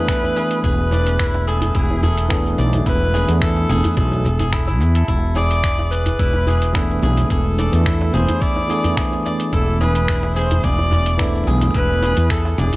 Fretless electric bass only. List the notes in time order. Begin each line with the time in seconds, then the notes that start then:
0.64 E1
1.75 E1
2.58 B1
2.86 E1
3.29 E2
3.69 E1
3.97 B1
4.25 E1
4.80 E2
5.08 E1
6.19 E1
7.02 B1
7.31 E1
7.73 E2
8.14 E1
9.53 E1
10.64 E1
11.47 B1
11.75 E1
12.17 E2
12.58 E1